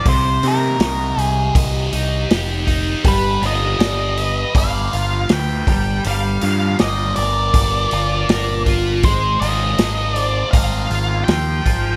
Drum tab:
HH |oooooooo|oooooooo|oooooooo|oooooooo|
SD |--o---o-|--o---o-|--o---o-|--o---o-|
BD |o---o--o|o---o--o|----o--o|o---o--o|